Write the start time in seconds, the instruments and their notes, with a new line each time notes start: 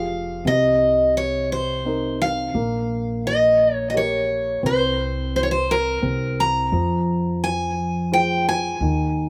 Already playing: upright bass F1, grand piano F3 F4 G4 G#4, steel-string acoustic guitar F5
0.45 upright bass C2, grand piano C3, steel-string acoustic guitar D#5
1.17 steel-string acoustic guitar C#5
1.52 steel-string acoustic guitar C5
1.85 grand piano C4 D#4 A#4
2.22 steel-string acoustic guitar F5
2.54 upright bass A#1, grand piano A#3
3.27 steel-string acoustic guitar D#5
3.74 steel-string acoustic guitar C#5
3.90 grand piano G4, steel-string acoustic guitar D#5
3.94 grand piano A#4 C#5, steel-string acoustic guitar C#5
4.63 upright bass C2, grand piano C4, steel-string acoustic guitar C5
5.36 steel-string acoustic guitar C5
5.43 steel-string acoustic guitar C#5
5.51 steel-string acoustic guitar C5
5.71 steel-string acoustic guitar A#4
6.02 upright bass C2, grand piano C4
6.40 steel-string acoustic guitar A#5
6.72 upright bass F2, grand piano F3
7.44 steel-string acoustic guitar G#5
8.12 grand piano F4 G#4 C5, steel-string acoustic guitar G5
8.49 steel-string acoustic guitar G#5
8.81 upright bass D#2, grand piano D#3